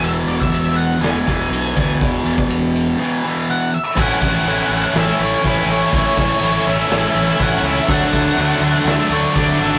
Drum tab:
CC |----------------|----------------|x---x---x---x---|x---x---x---x---|
RD |x-x-x-x-x-x-x-x-|x-x-x-x---------|----------------|----------------|
SD |--------o-------|----------------|--------o-------|--------o-o-----|
BD |---o------o---o-|o--o------------|o-o---------o---|o-o---------o---|

CC |x---x---x---x---|
RD |----------------|
SD |--------o-------|
BD |o-o---------o---|